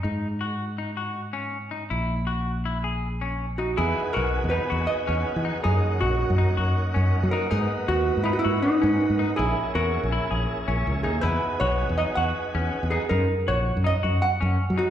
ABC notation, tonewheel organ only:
X:1
M:5/4
L:1/8
Q:1/4=161
K:G#m
V:1 name="Tonewheel organ"
z8 z2 | z8 z2 | [B,DFG]8- [B,DFG]2 | [A,CDF]8- [A,CDF]2 |
[A,B,DF]8- [A,B,DF]2 | [A,CEG]8- [A,CEG]2 | [B,DFG]8- [B,DFG]2 | z8 z2 |]